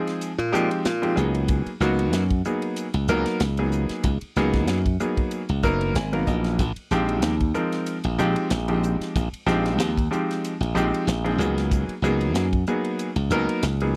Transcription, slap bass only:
0.38 0.51 A#2 medium
0.53 0.69 A#2 medium
0.85 1.14 A#2 medium
1.17 1.62 C#2 medium
1.66 muted slap bass stroke soft
1.80 2.13 C#2 medium
2.13 2.41 F#2 medium
2.94 3.07 C#2 medium
3.08 3.24 C#2 medium
3.40 3.85 C#2 medium
3.90 muted slap bass stroke soft
4.04 4.20 C#2 medium
4.22 muted slap bass stroke soft
4.36 4.67 C#2 medium
4.67 4.96 F#2 medium
5.49 5.62 C#2 medium
5.64 5.92 F#1 medium
5.95 6.24 G#1 medium
6.27 6.56 A#1 medium
6.59 6.75 A#1 medium
6.76 muted slap bass stroke soft
6.91 7.23 A#1 medium
7.23 7.52 D#2 medium
8.04 8.17 A#1 medium
8.19 8.35 A#1 medium
8.51 8.96 A#1 medium
9.16 9.31 A#1 medium
9.46 9.78 A#1 medium
9.78 10.07 D#2 medium
10.61 10.73 A#1 medium
10.75 10.91 A#1 medium
11.07 11.36 A#1 loud
11.38 11.84 C#2 loud
11.88 muted slap bass stroke soft
12.02 12.34 C#2 medium
12.34 12.63 F#2 medium
13.16 13.29 C#2 loud
13.30 13.46 C#2 medium
13.63 13.96 C#2 medium

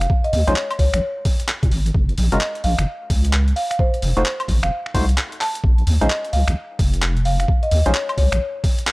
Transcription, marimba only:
0.01 0.07 F5 medium
0.24 0.30 D#5 medium
0.33 0.42 D#5 medium
0.47 0.58 C#5 medium
0.79 0.89 C#5 medium
0.94 0.99 C#5 medium
2.32 2.62 D#5 medium
2.64 2.79 F5 medium
3.56 3.65 F5 medium
3.71 3.76 F5 medium
3.79 3.95 C5 medium
4.17 4.27 C5 loud
4.63 4.73 F5 medium
5.41 5.70 A5 medium
6.01 6.31 D#5 loud
6.33 6.48 F5 medium
7.25 7.35 F5 medium
7.40 7.45 F5 medium
7.63 7.68 D#5 medium
7.71 7.81 D#5 medium
7.86 7.96 C#5 loud
8.18 8.27 C#5 medium

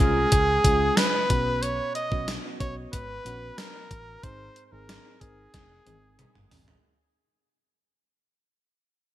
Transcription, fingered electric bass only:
0.00 0.24 C2 medium
0.32 0.57 C#2 loud
0.64 0.89 C#2 medium
1.30 1.79 B1 loud
2.12 2.36 B1 loud
2.60 2.85 B1 medium
2.93 3.18 G#1 loud
3.25 3.50 A#1 loud
3.91 4.15 A1 medium
4.23 4.48 G#1 loud
4.72 4.97 G#1 loud
5.21 5.46 G#1 medium
5.54 5.78 F1 loud
5.87 6.23 G#1 medium
6.36 6.48 G#1 medium
6.52 6.76 A1 medium

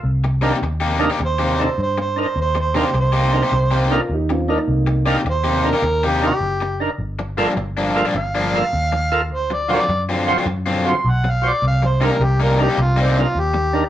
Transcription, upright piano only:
3.88 3.93 A4 medium
3.93 4.10 F4 medium
3.93 4.11 A#4 medium
4.13 4.30 D#4 medium
4.13 4.31 G4 medium
4.31 4.48 C4 medium
4.31 4.49 F4 medium
4.51 5.13 A#3 medium
4.51 5.16 D#4 medium

